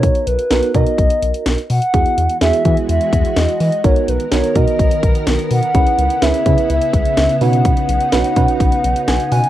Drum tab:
HH |xxxxxxxxxxxxxxox|xxxxxxxxxxxxxxox|xxxxxxxxxxxxxxox|xxxxxxxxxxxxxxox|
SD |----o-------o---|----o-------o---|----o-------o---|----o-------o---|
BD |o-----o-o-------|o-----o---o-----|o-----o-o-o-----|o-----o---o-----|

HH |xxxxxxxxxxxxxxox|
SD |----o-------o---|
BD |o-----o-o-------|